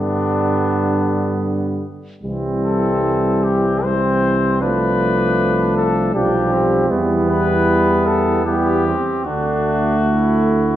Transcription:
Already playing: tuba G2, trombone D3, french horn G3, trumpet B3 D4
2.23 tuba C2, trombone E3, french horn G3, trumpet C4
2.63 trumpet A4
3.44 trumpet G4
3.83 trombone E3, french horn G3, trumpet C4 C5
4.61 trombone F3, french horn A3, trumpet D4 B4
5.77 trumpet A4
6.14 tuba B1, trombone F3, french horn G3, trumpet D4 G4
6.52 trumpet C4
6.90 tuba E2, trombone E3, french horn G3, trumpet B3
7.29 trumpet B4
8.07 trumpet A4
8.45 trombone E3, french horn G3, trumpet B3 G4
8.86 trumpet C4
9.24 tuba D2, french horn A3, trombone A3, trumpet D4 F#4
10.08 trumpet E4

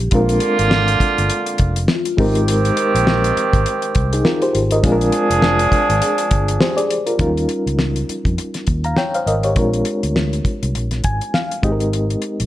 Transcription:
Already playing: vibraphone G4, reed electric piano A#4
0.11 fingered electric bass A#1, horn section D3 A#3 F4, reed electric piano G#3 C4 D4 F4 A#4, kick, closed hi-hat
0.29 closed hi-hat
0.40 closed hi-hat
0.59 fingered electric bass G#1, closed hi-hat
0.71 snare
0.88 closed hi-hat
1.00 muted fingered electric bass stroke, kick, closed hi-hat
1.18 fingered electric bass G1, closed hi-hat
1.30 closed hi-hat
1.46 closed hi-hat
1.58 fingered electric bass F1, kick, closed hi-hat
1.76 closed hi-hat
1.88 vibraphone F4, snare
2.05 closed hi-hat
2.17 fingered electric bass G#1, horn section D#3 C4 G4, reed electric piano G#3 C4 D#4 G4 A#4, kick, open hi-hat
2.35 closed hi-hat
2.48 closed hi-hat
2.65 closed hi-hat
2.77 closed hi-hat
2.95 fingered electric bass A#1, closed hi-hat
3.07 snare
3.24 closed hi-hat
3.37 closed hi-hat
3.53 fingered electric bass G#1, kick, closed hi-hat
3.66 closed hi-hat
3.82 closed hi-hat
3.95 fingered electric bass C2, kick, closed hi-hat
4.13 reed electric piano D#4 G#4, closed hi-hat
4.25 reed electric piano F4 A#4, snare
4.42 reed electric piano G4 C5, closed hi-hat
4.55 fingered electric bass G#1, closed hi-hat
4.71 reed electric piano A#4 D#5, closed hi-hat
4.83 fingered electric bass A#1, horn section F3 D4 G#4, reed electric piano G#3 C4 D4 F4 G#4, kick, closed hi-hat
4.92 reed electric piano A#4
5.01 closed hi-hat
5.12 closed hi-hat
5.30 fingered electric bass F1, closed hi-hat
5.42 snare
5.59 closed hi-hat
5.72 muted fingered electric bass stroke, kick, closed hi-hat
5.90 fingered electric bass G#1, closed hi-hat
6.02 vibraphone G#4, closed hi-hat
6.18 closed hi-hat
6.31 fingered electric bass G1, kick, closed hi-hat
6.48 closed hi-hat
6.60 reed electric piano G4 C5, snare
6.77 reed electric piano G#4 D5, closed hi-hat
6.91 closed hi-hat
7.06 reed electric piano F4 A#4, closed hi-hat
7.18 fingered electric bass D#2, reed electric piano F#3 C#4 D#4 F4 A#4, kick, closed hi-hat
7.24 reed electric piano G3
7.37 closed hi-hat
7.49 closed hi-hat
7.66 fingered electric bass C#2, closed hi-hat
7.79 snare
7.96 closed hi-hat
8.09 muted fingered electric bass stroke, closed hi-hat
8.25 fingered electric bass F2, kick, closed hi-hat
8.38 closed hi-hat
8.54 snare, closed hi-hat
8.67 fingered electric bass D#2, kick, closed hi-hat
8.84 reed electric piano F5 A#5, closed hi-hat
8.97 reed electric piano C#5 G5, snare
9.14 reed electric piano C5 F5, closed hi-hat
9.26 fingered electric bass G#1, reed electric piano A#4 D#5, closed hi-hat
9.43 reed electric piano G4 C#5, closed hi-hat
9.56 fingered electric bass A#1, reed electric piano G#3 C4 D4 F4 A#4, kick, closed hi-hat
9.74 closed hi-hat
9.85 closed hi-hat
10.03 fingered electric bass D2, closed hi-hat
10.16 snare
10.33 closed hi-hat
10.45 muted fingered electric bass stroke, kick, closed hi-hat
10.63 fingered electric bass C2, closed hi-hat
10.75 fingered electric bass A#1, closed hi-hat
10.91 snare, closed hi-hat
11.04 fingered electric bass G#1, reed electric piano G#5, kick, closed hi-hat
11.21 closed hi-hat
11.34 reed electric piano F5, snare
11.51 closed hi-hat
11.62 fingered electric bass G#1, reed electric piano G#3 C4 D#4 G4 G#4 D#5, kick, closed hi-hat
11.72 reed electric piano A#4
11.80 closed hi-hat
11.93 closed hi-hat
12.10 closed hi-hat
12.22 closed hi-hat
12.40 fingered electric bass A#1, closed hi-hat

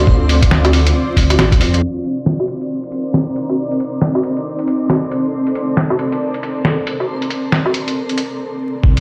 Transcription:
Already playing: ambient pad C4 F4 D5, synth texture C4 C5
0.07 detuned saw bass D2, kick
0.29 open hi-hat
0.42 kick, closed hi-hat
0.51 snare
0.65 closed hi-hat, low woodblock
0.73 open hi-hat
0.87 closed hi-hat
1.17 detuned saw bass D2, kick, open hi-hat
1.30 closed hi-hat, low woodblock
1.39 detuned saw bass A1, snare, closed hi-hat, low woodblock
1.52 detuned saw bass D2, kick, closed hi-hat
1.61 detuned saw bass F2, open hi-hat
1.74 closed hi-hat
1.82 ambient pad C4 D#4 A#4 D5, synth texture C4 C5
1.96 closed hi-hat
2.04 closed hi-hat
2.26 snare
2.40 low woodblock
2.48 closed hi-hat
2.61 closed hi-hat
2.83 closed hi-hat
2.92 closed hi-hat
3.14 snare
3.36 closed hi-hat
3.49 low woodblock
3.58 ambient pad A4
3.71 closed hi-hat
3.80 closed hi-hat
4.02 snare
4.15 low woodblock
4.24 closed hi-hat
4.37 closed hi-hat
4.59 closed hi-hat
4.68 closed hi-hat
4.90 snare, low woodblock
5.11 closed hi-hat
5.34 ambient pad A#4
5.47 closed hi-hat
5.55 closed hi-hat
5.77 snare
5.90 low woodblock
5.99 closed hi-hat
6.12 closed hi-hat
6.34 closed hi-hat
6.43 closed hi-hat
6.65 snare
6.87 closed hi-hat
7.00 low woodblock
7.22 closed hi-hat
7.30 closed hi-hat
7.52 snare
7.66 low woodblock
7.74 closed hi-hat
7.88 closed hi-hat
8.09 closed hi-hat
8.18 closed hi-hat
8.83 detuned saw bass C2, kick
8.97 closed hi-hat

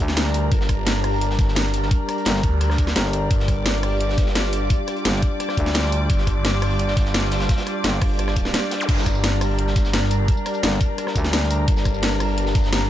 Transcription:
Already playing: synth drone G3 D4 A#4, string section G4 D5 A#5
0.00 fm bass D2
0.08 snare
0.17 snare, closed hi-hat
0.26 snare
0.34 closed hi-hat, open hi-hat
0.52 detuned saw bass G1, kick, closed hi-hat
0.61 snare
0.69 kick, cross-stick, closed hi-hat
0.86 snare, closed hi-hat
1.04 cross-stick, closed hi-hat, open hi-hat
1.21 closed hi-hat
1.30 snare
1.39 kick, snare, closed hi-hat
1.48 snare
1.55 snare, closed hi-hat
1.65 snare
1.74 closed hi-hat, open hi-hat
1.83 snare
1.91 kick, closed hi-hat
2.09 cross-stick, closed hi-hat
2.18 closed hi-hat
2.25 fm bass G1, snare, closed hi-hat
2.35 snare
2.43 detuned saw bass D2, kick, closed hi-hat
2.61 cross-stick, closed hi-hat
2.70 cross-stick, snare
2.78 kick, closed hi-hat
2.87 snare
2.96 fm bass G1, snare, closed hi-hat
3.05 snare
3.13 closed hi-hat, open hi-hat
3.30 detuned saw bass G1, synth drone F4, kick, closed hi-hat
3.40 snare
3.45 string section D6, kick, cross-stick, closed hi-hat
3.66 snare, closed hi-hat
3.83 cross-stick, closed hi-hat, open hi-hat
4.00 closed hi-hat
4.09 snare
4.17 kick, snare, closed hi-hat
4.26 snare
4.35 snare, closed hi-hat
4.44 snare
4.53 closed hi-hat, open hi-hat
4.70 kick, closed hi-hat
4.87 cross-stick, closed hi-hat
4.96 closed hi-hat
5.05 fm bass G1, snare, closed hi-hat
5.14 snare
5.22 kick, closed hi-hat
5.40 cross-stick, closed hi-hat
5.49 cross-stick, snare
5.57 fm bass D2, kick, closed hi-hat
5.66 snare
5.74 snare, closed hi-hat
5.84 snare
5.92 closed hi-hat, open hi-hat
6.10 detuned saw bass G1, kick, closed hi-hat
6.18 snare
6.27 kick, cross-stick, closed hi-hat
6.45 snare, closed hi-hat
6.62 cross-stick, closed hi-hat, open hi-hat
6.79 closed hi-hat
6.88 snare
6.97 kick, snare, closed hi-hat
7.05 snare
7.14 snare, closed hi-hat
7.23 snare
7.31 snare, closed hi-hat, open hi-hat
7.40 snare, closed hi-hat
7.49 kick, snare, closed hi-hat
7.58 snare, closed hi-hat
7.67 cross-stick, closed hi-hat
7.84 fm bass G1, snare, closed hi-hat
8.02 detuned saw bass G1, kick, cross-stick, closed hi-hat, open hi-hat
8.19 cross-stick, closed hi-hat
8.27 cross-stick, snare
8.36 kick, closed hi-hat
8.45 snare
8.54 snare, closed hi-hat
8.71 snare, closed hi-hat, open hi-hat
8.80 zap
8.88 detuned saw bass G1, synth drone A#4, kick, closed hi-hat, crash
8.98 snare, tambourine
9.03 string section A#5, kick, cross-stick, closed hi-hat, tambourine
9.15 tambourine
9.24 snare, closed hi-hat
9.41 cross-stick, closed hi-hat, open hi-hat, tambourine
9.58 closed hi-hat
9.67 snare
9.76 kick, snare, closed hi-hat, tambourine
9.85 snare, tambourine
9.93 snare, closed hi-hat
10.03 snare
10.11 closed hi-hat, open hi-hat, tambourine
10.28 kick, closed hi-hat
10.37 tambourine
10.46 cross-stick, closed hi-hat, tambourine
10.54 closed hi-hat, tambourine
10.63 fm bass G1, snare, closed hi-hat
10.72 snare
10.81 kick, closed hi-hat, tambourine
10.98 cross-stick, closed hi-hat
11.07 cross-stick, snare
11.16 fm bass D2, kick, closed hi-hat, tambourine
11.24 snare, tambourine
11.33 snare, closed hi-hat
11.42 snare
11.51 closed hi-hat, open hi-hat, tambourine
11.68 detuned saw bass G1, kick, closed hi-hat
11.77 snare, tambourine
11.85 kick, cross-stick, closed hi-hat, tambourine
11.94 tambourine
12.02 snare, closed hi-hat
12.20 cross-stick, closed hi-hat, open hi-hat, tambourine
12.38 closed hi-hat
12.46 snare
12.55 kick, snare, closed hi-hat, tambourine
12.64 snare, tambourine
12.72 snare, closed hi-hat
12.81 snare

